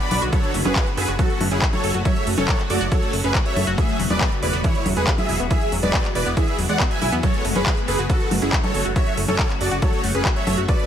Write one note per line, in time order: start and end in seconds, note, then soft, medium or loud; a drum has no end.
0.00 0.20 D5 medium
0.00 0.20 B5 loud
0.00 closed hi-hat soft
0.11 0.20 B1 medium
0.11 0.18 B4 medium
0.11 open hi-hat loud
0.11 high conga medium
0.22 0.31 B1 medium
0.22 0.29 F#4 loud
0.22 closed hi-hat medium
0.33 0.43 F#3 loud
0.33 0.52 A4 medium
0.33 0.52 C#5 loud
0.33 kick loud
0.33 closed hi-hat soft
0.44 closed hi-hat soft
0.54 0.63 F#1 medium
0.54 0.61 A3 medium
0.54 open hi-hat loud
0.65 0.74 F#1 medium
0.65 0.75 C#4 medium
0.65 0.85 G#4 medium
0.65 0.85 B4 medium
0.65 closed hi-hat soft
0.65 high conga medium
0.76 0.83 F#4 medium
0.76 kick loud
0.76 clap loud
0.76 closed hi-hat soft
0.87 closed hi-hat soft
0.97 1.06 F#1 medium
0.97 1.10 G#4 medium
0.97 1.04 A4 medium
0.97 1.10 B4 medium
0.97 open hi-hat medium
1.08 1.17 F#1 medium
1.08 1.15 F#4 loud
1.08 closed hi-hat soft
1.19 1.29 F#3 loud
1.19 1.39 F#4 medium
1.19 1.39 A4 loud
1.19 kick loud
1.19 closed hi-hat medium
1.30 closed hi-hat soft
1.40 1.50 F#1 medium
1.40 1.47 A3 medium
1.40 open hi-hat loud
1.40 high conga medium
1.51 1.60 F#1 medium
1.51 1.61 C#4 medium
1.51 1.64 E4 medium
1.51 1.64 G#4 medium
1.51 closed hi-hat medium
1.62 1.69 F#4 medium
1.62 kick loud
1.62 clap loud
1.62 closed hi-hat soft
1.73 1.93 A4 medium
1.73 1.93 C#5 medium
1.73 closed hi-hat soft
1.73 high conga medium
1.84 1.93 F#1 medium
1.84 1.90 A4 medium
1.84 open hi-hat medium
1.94 2.04 F#1 medium
1.94 2.01 F#4 loud
1.94 closed hi-hat medium
2.05 2.15 F#3 loud
2.05 2.25 C#5 medium
2.05 2.25 E5 loud
2.05 kick loud
2.05 closed hi-hat medium
2.16 closed hi-hat soft
2.27 2.36 F#1 medium
2.27 2.33 A3 medium
2.27 open hi-hat loud
2.38 2.47 F#1 medium
2.38 2.48 C#4 medium
2.38 2.57 A4 medium
2.38 2.57 C#5 loud
2.38 closed hi-hat medium
2.38 high conga medium
2.48 2.55 F#4 medium
2.48 kick loud
2.48 clap loud
2.48 closed hi-hat soft
2.59 clap soft
2.59 closed hi-hat soft
2.70 2.79 F#1 loud
2.70 2.83 F#4 medium
2.70 2.77 A4 medium
2.70 2.83 D5 medium
2.70 open hi-hat medium
2.81 2.90 F#1 medium
2.81 2.87 F#4 loud
2.81 closed hi-hat medium
2.92 3.02 F#3 loud
2.92 3.11 A4 medium
2.92 3.11 C#5 loud
2.92 kick loud
2.92 closed hi-hat medium
3.02 closed hi-hat soft
3.13 3.22 F#1 medium
3.13 3.20 A3 medium
3.13 open hi-hat loud
3.24 3.33 F#1 medium
3.24 3.34 C#4 medium
3.24 3.37 G#4 medium
3.24 3.37 B4 medium
3.24 closed hi-hat medium
3.35 3.41 F#4 medium
3.35 kick loud
3.35 clap loud
3.35 closed hi-hat medium
3.46 3.65 C#5 medium
3.46 3.65 E5 loud
3.46 closed hi-hat soft
3.56 3.65 F#1 medium
3.56 3.63 A4 medium
3.56 open hi-hat medium
3.56 high conga medium
3.67 3.76 F#1 medium
3.67 3.74 F#4 loud
3.67 closed hi-hat medium
3.78 3.88 E3 loud
3.78 3.98 G#4 medium
3.78 3.98 E5 loud
3.78 kick loud
3.78 closed hi-hat medium
3.89 closed hi-hat soft
3.99 4.09 E1 loud
3.99 4.06 F#3 medium
3.99 open hi-hat loud
4.10 4.19 E1 medium
4.10 4.20 G#3 medium
4.10 4.30 B4 medium
4.10 4.30 D5 loud
4.10 closed hi-hat medium
4.10 high conga medium
4.21 4.28 B3 medium
4.21 kick loud
4.21 clap loud
4.21 closed hi-hat medium
4.32 closed hi-hat soft
4.42 4.52 E1 medium
4.42 4.49 E4 medium
4.42 4.56 B4 medium
4.42 4.56 D5 medium
4.42 open hi-hat medium
4.53 4.63 E1 medium
4.53 4.60 B3 loud
4.53 closed hi-hat medium
4.64 4.74 E3 loud
4.64 4.84 E4 medium
4.64 4.84 C#5 loud
4.64 kick loud
4.64 closed hi-hat medium
4.75 closed hi-hat soft
4.86 4.95 E1 medium
4.86 4.92 F#3 medium
4.86 open hi-hat loud
4.86 high conga medium
4.96 5.06 E1 medium
4.96 5.07 G#3 medium
4.96 5.10 G#4 medium
4.96 5.10 B4 medium
4.96 closed hi-hat medium
5.07 5.14 B3 medium
5.07 kick loud
5.07 clap loud
5.07 closed hi-hat medium
5.18 5.38 G#4 medium
5.18 5.38 E5 loud
5.18 closed hi-hat soft
5.18 high conga medium
5.29 5.38 E1 medium
5.29 5.36 E4 medium
5.29 open hi-hat medium
5.40 5.49 E1 medium
5.40 5.46 B3 loud
5.40 closed hi-hat medium
5.50 5.61 E3 loud
5.50 5.70 G#4 medium
5.50 5.70 E5 loud
5.50 kick loud
5.50 closed hi-hat medium
5.61 closed hi-hat soft
5.72 5.81 E1 medium
5.72 5.79 F#3 medium
5.72 open hi-hat loud
5.83 5.92 E1 medium
5.83 5.93 G#3 medium
5.83 6.02 B4 medium
5.83 6.02 D5 loud
5.83 closed hi-hat medium
5.83 high conga medium
5.94 6.00 B3 medium
5.94 kick loud
5.94 clap loud
5.94 closed hi-hat medium
6.05 clap soft
6.05 closed hi-hat soft
6.15 6.24 E1 medium
6.15 6.22 E4 medium
6.15 6.28 B4 medium
6.15 6.28 D5 medium
6.15 open hi-hat medium
6.26 6.35 E1 medium
6.26 6.33 B3 loud
6.26 closed hi-hat medium
6.37 6.47 E3 loud
6.37 6.56 G#4 medium
6.37 6.56 E5 loud
6.37 kick loud
6.37 closed hi-hat medium
6.48 closed hi-hat soft
6.58 6.68 E1 medium
6.58 6.65 F#3 medium
6.58 open hi-hat loud
6.69 6.78 E2 medium
6.69 6.79 G#3 medium
6.69 6.82 D5 medium
6.69 6.82 F#5 medium
6.69 closed hi-hat medium
6.80 6.87 B3 medium
6.80 kick loud
6.80 clap loud
6.80 closed hi-hat medium
6.91 7.10 E5 medium
6.91 7.10 G#5 loud
6.91 closed hi-hat soft
7.02 7.11 B1 medium
7.02 7.08 E4 medium
7.02 open hi-hat medium
7.02 high conga medium
7.12 7.22 E2 medium
7.12 7.19 B3 loud
7.12 closed hi-hat medium
7.23 7.33 F#3 loud
7.23 7.43 A4 medium
7.23 7.43 C#5 loud
7.23 kick loud
7.23 closed hi-hat medium
7.34 closed hi-hat soft
7.45 7.54 F#1 medium
7.45 7.51 A3 medium
7.45 open hi-hat loud
7.55 7.65 F#1 medium
7.55 7.66 C#4 medium
7.55 7.75 G#4 medium
7.55 7.75 B4 loud
7.55 closed hi-hat medium
7.55 high conga medium
7.66 7.73 F#4 medium
7.66 kick loud
7.66 clap loud
7.66 closed hi-hat medium
7.77 closed hi-hat soft
7.88 7.97 F#1 loud
7.88 8.01 G#4 medium
7.88 7.95 A4 medium
7.88 8.01 B4 medium
7.88 open hi-hat medium
7.99 8.08 F#1 medium
7.99 8.05 F#4 loud
7.99 closed hi-hat medium
8.10 8.20 F#3 loud
8.10 8.29 F#4 medium
8.10 8.29 A4 loud
8.10 kick loud
8.10 closed hi-hat medium
8.20 closed hi-hat soft
8.31 8.40 F#1 loud
8.31 8.38 A3 medium
8.31 open hi-hat loud
8.31 high conga medium
8.42 8.51 F#1 medium
8.42 8.52 C#4 medium
8.42 8.55 E4 medium
8.42 8.55 G#4 medium
8.42 closed hi-hat medium
8.53 8.59 F#4 medium
8.53 kick loud
8.53 clap loud
8.53 closed hi-hat medium
8.63 8.83 A4 medium
8.63 8.83 C#5 loud
8.63 closed hi-hat soft
8.63 high conga medium
8.74 8.84 F#1 medium
8.74 8.81 A4 medium
8.74 open hi-hat loud
8.85 8.94 F#1 medium
8.85 8.92 F#4 loud
8.85 closed hi-hat medium
8.96 9.06 F#3 loud
8.96 9.15 C#5 medium
8.96 9.15 E5 loud
8.96 kick loud
8.96 closed hi-hat medium
9.07 closed hi-hat soft
9.17 9.27 F#1 medium
9.17 9.24 A3 medium
9.17 open hi-hat loud
9.28 9.38 F#1 medium
9.28 9.38 C#4 medium
9.28 9.48 A4 medium
9.28 9.48 C#5 loud
9.28 closed hi-hat medium
9.28 high conga medium
9.39 9.46 F#4 medium
9.39 kick loud
9.39 clap loud
9.39 closed hi-hat medium
9.50 clap soft
9.50 closed hi-hat soft
9.60 9.70 F#1 loud
9.60 9.74 F#4 medium
9.60 9.67 A4 medium
9.60 9.74 D5 medium
9.60 open hi-hat medium
9.71 9.81 F#1 medium
9.71 9.78 F#4 loud
9.71 closed hi-hat medium
9.82 9.92 F#3 loud
9.82 10.02 A4 medium
9.82 10.02 C#5 loud
9.82 kick loud
9.82 closed hi-hat medium
9.93 closed hi-hat soft
10.04 10.13 F#1 medium
10.04 10.11 A3 medium
10.04 open hi-hat loud
10.14 10.24 F#1 medium
10.14 10.25 C#4 medium
10.14 10.28 G#4 medium
10.14 10.28 B4 medium
10.14 closed hi-hat medium
10.25 10.32 F#4 medium
10.25 kick loud
10.25 clap loud
10.25 closed hi-hat medium
10.36 10.56 C#5 medium
10.36 10.56 E5 loud
10.36 closed hi-hat soft
10.47 10.56 F#1 medium
10.47 10.54 A4 medium
10.47 open hi-hat medium
10.47 high conga medium
10.58 10.67 F#1 medium
10.58 10.64 F#4 loud
10.58 closed hi-hat medium
10.68 10.79 F#3 loud
10.68 10.86 B4 medium
10.68 10.86 D5 loud
10.68 kick loud
10.68 closed hi-hat medium
10.79 closed hi-hat soft